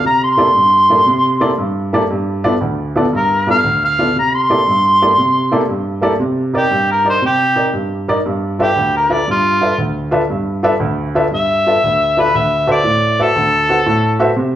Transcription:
0.04 upright piano C3, harmonica A#5
0.24 harmonica C6
0.37 upright piano A#3 E4 G4 A4 D5
0.54 upright piano G2
0.90 upright piano A#3 E4 G4 A4 D5
1.06 upright piano C3
1.40 upright piano A#3 E4 G4 A4 D5
1.58 upright piano G2
1.93 upright piano A#3 E4 G4 A4 D5
2.10 upright piano G2
2.44 upright piano B3 E4 F4 A4 D5
2.61 upright piano D2
2.96 upright piano B3 E4 F4 A4 D5
3.13 upright piano G2, harmonica A#4
3.47 upright piano B3 E4 F4 A4 D5
3.51 harmonica F5
3.64 upright piano D2
3.85 harmonica F5
3.99 upright piano B3 E4 F4 A4 D5
4.16 upright piano C3, harmonica A#5
4.35 harmonica C6
4.50 upright piano A#3 E4 G4 A4 D5
4.67 upright piano G2
5.02 upright piano A#3 E4 G4 A4 D5
5.18 upright piano C3
5.52 upright piano A#3 E4 G4 A4 D5
5.69 upright piano G2
6.01 upright piano A#3 E4 G4 A4 D5
6.20 upright piano C3
6.54 upright piano D#4 A#4 D5, harmonica G4
6.71 upright piano G2
6.91 harmonica A#4
7.05 upright piano D#4 A#4 D5
7.10 harmonica C5
7.22 upright piano C3
7.26 harmonica G4
7.56 upright piano D#4 A#4 D5
7.73 upright piano G2
8.08 upright piano D#4 A#4 D5
8.26 upright piano G2
8.59 upright piano F4 A4 B4 D5 E5, harmonica G4
8.76 upright piano D2
8.97 harmonica A#4
9.10 upright piano F4 A4 B4 D5 E5, harmonica D5
9.28 upright piano G2, harmonica F4
9.61 upright piano F4 A4 B4 D5 E5
9.78 upright piano D2
10.11 upright piano F4 A4 B4 D5 E5
10.30 upright piano G2
10.63 upright piano F4 A4 B4 D5 E5
10.80 upright piano D2
11.15 upright piano F4 A4 B4 D5 E5
11.31 upright piano G2, harmonica E5
11.66 upright piano F4 A4 B4 D5 E5
11.84 upright piano D2
12.17 upright piano F4 A4 B4 D5 E5, harmonica B4
12.35 upright piano D2, harmonica E5
12.67 upright piano F#4 A4 B4 C5 E5
12.71 harmonica D5
12.84 upright piano A2
13.19 upright piano F#4 A4 B4 C5 E5, harmonica A4
13.36 upright piano D2
13.69 upright piano F#4 A4 B4 C5 F#5
13.86 upright piano A2
14.19 upright piano F#4 A4 B4 C5 E5
14.36 upright piano C3

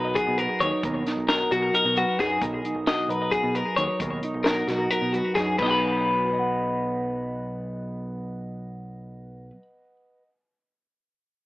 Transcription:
Already playing: fingered electric bass B1, clean electric guitar B2 F#3 D#4 F#4 A#4 B4
0.15 clean electric guitar F#4 G#4, kick, closed hi-hat
0.28 fingered electric bass B2
0.38 clean electric guitar F#2 A#4 B4, closed hi-hat
0.61 fingered electric bass D#2, clean electric guitar D#4 C#5, closed hi-hat
0.83 fingered electric bass D#2, clean electric guitar B2 A#4, kick, closed hi-hat
1.07 clean electric guitar D#4, snare, closed hi-hat
1.17 fingered electric bass B1
1.29 clean electric guitar F#4 A#4, snare, closed hi-hat
1.51 fingered electric bass B2, clean electric guitar F#3 F#4 A#4, closed hi-hat
1.73 clean electric guitar D#4 A#4, closed hi-hat
1.85 fingered electric bass B2, clean electric guitar F#4
1.97 clean electric guitar F#2 F#4 B4, closed hi-hat
2.19 fingered electric bass F#2, clean electric guitar D#4 G#4, kick, snare, closed hi-hat
2.42 fingered electric bass B1, clean electric guitar B2 A#4, kick, closed hi-hat
2.65 clean electric guitar D#4, closed hi-hat
2.75 fingered electric bass B1
2.87 clean electric guitar F#4 D#5, snare, closed hi-hat
3.08 fingered electric bass B1, clean electric guitar F#3 A#4 B4, closed hi-hat
3.32 clean electric guitar F#4 G#4, kick, closed hi-hat
3.43 fingered electric bass B2
3.55 clean electric guitar F#2 A#4 B4, closed hi-hat
3.77 fingered electric bass D#2, clean electric guitar D#4 C#5, closed hi-hat
4.00 fingered electric bass D#2, clean electric guitar B2 A#4, kick, closed hi-hat
4.23 clean electric guitar D#4, closed hi-hat
4.34 fingered electric bass B1
4.44 clean electric guitar F#4 A#4, snare, closed hi-hat
4.67 fingered electric bass B2, clean electric guitar F#3 F#4 A#4, snare, closed hi-hat
4.91 clean electric guitar F#4 A#4, closed hi-hat
5.02 fingered electric bass B2
5.13 clean electric guitar F#2 F#4 B4, closed hi-hat
5.35 fingered electric bass F#2, clean electric guitar D#4 G#4, kick, snare, closed hi-hat
5.59 fingered electric bass B1, clean electric guitar B2 F#3 B4, kick, crash
5.63 clean electric guitar D#4 F#4 D#5 F#5
5.71 clean electric guitar B5
6.27 clean electric guitar B4
6.33 clean electric guitar D#5
6.39 clean electric guitar F#5

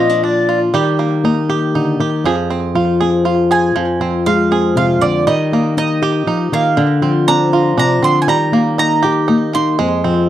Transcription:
Already playing: nylon-string guitar A#2 F3 F4, five-string banjo D3 A#3 D4
0.00 five-string banjo F4, pedal steel guitar D#5
0.09 nylon-string guitar D4
0.24 five-string banjo D4, pedal steel guitar D5
0.49 five-string banjo F4
0.74 nylon-string guitar D#3, five-string banjo G3 G4
0.99 five-string banjo A#3
1.24 nylon-string guitar A#3, five-string banjo D#4
1.49 nylon-string guitar G4, five-string banjo G4
1.75 nylon-string guitar D3, five-string banjo D#4
2.00 nylon-string guitar D#3, five-string banjo G4
2.24 nylon-string guitar F2, five-string banjo F3 G#4
2.50 five-string banjo C4
2.75 nylon-string guitar F3, five-string banjo F4
3.01 nylon-string guitar C4, five-string banjo G#4
3.25 five-string banjo F4
3.51 five-string banjo G#4, mandolin G#5
3.75 nylon-string guitar F2, five-string banjo F3
4.00 nylon-string guitar F3, five-string banjo C4
4.26 nylon-string guitar G#3, five-string banjo F4, mandolin F5
4.51 nylon-string guitar C4, five-string banjo G#4
4.75 nylon-string guitar C3, five-string banjo F4, mandolin F5
5.01 nylon-string guitar D3, five-string banjo C4, mandolin D5
5.27 nylon-string guitar D#3, five-string banjo G3, mandolin D#5
5.52 nylon-string guitar A#3, five-string banjo A#3
5.77 nylon-string guitar D#4, five-string banjo D#4, mandolin D#5
6.02 nylon-string guitar G4, five-string banjo G4
6.27 nylon-string guitar F3, five-string banjo D#4
6.52 nylon-string guitar D#3, five-string banjo A#3, mandolin F5
6.77 five-string banjo D3, nylon-string guitar D3
7.02 nylon-string guitar F3, five-string banjo C4
7.28 nylon-string guitar C4, five-string banjo D4, mandolin A#5
7.53 nylon-string guitar D4, five-string banjo F4
7.77 nylon-string guitar C3, five-string banjo D4, mandolin A#5
8.02 nylon-string guitar D3, five-string banjo C4, mandolin C6
8.22 mandolin G#5
8.27 nylon-string guitar D#3, five-string banjo G3, mandolin A#5
8.52 nylon-string guitar A#3, five-string banjo A#3
8.78 nylon-string guitar D#4, five-string banjo D#4, mandolin A#5
9.03 five-string banjo G4, nylon-string guitar G4
9.28 nylon-string guitar A#3, five-string banjo D#4
9.53 five-string banjo A#3, nylon-string guitar D#4, mandolin C6
9.79 nylon-string guitar F2, five-string banjo G#3
10.04 nylon-string guitar F3, five-string banjo C4

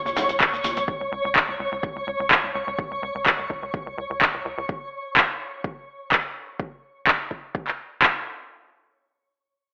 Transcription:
Already playing: synth texture C#5
0.06 analog synth bass D#2, high conga, shekere
0.16 analog synth bass D#2, open hi-hat, low conga, shekere
0.29 analog synth bass D#1, closed hi-hat, shekere
0.40 kick, clap, closed hi-hat, shekere
0.53 analog synth bass D#2, shekere
0.64 analog synth bass D#2, open hi-hat, high conga, shekere
0.77 analog synth bass C#2, closed hi-hat, shekere
0.88 kick
1.01 analog synth bass C#2
1.12 analog synth bass C#2
1.25 analog synth bass C#2
1.36 kick, clap
1.48 analog synth bass C#2
1.60 analog synth bass C#2
1.72 analog synth bass C#2
1.83 kick
1.96 analog synth bass C#2
2.07 analog synth bass C#2
2.20 analog synth bass C#2
2.31 kick, clap
2.44 analog synth bass C#2
2.55 analog synth bass C#2
2.67 analog synth bass C#2
2.79 kick
2.91 analog synth bass C#2
3.03 analog synth bass C#2
3.15 analog synth bass C#2
3.26 kick, clap
3.39 analog synth bass C#2
3.50 analog synth bass C#2, kick
3.63 analog synth bass C#2
3.74 kick
3.86 analog synth bass C#2
3.98 analog synth bass C#2
4.10 analog synth bass C#2
4.21 kick, clap
4.34 analog synth bass C#2
4.45 analog synth bass C#2
4.58 analog synth bass C#2
4.69 kick
5.17 kick, clap
5.64 kick
6.12 kick, clap
6.60 kick
7.07 kick, clap
7.31 kick
7.55 kick
7.68 clap
8.02 kick, clap

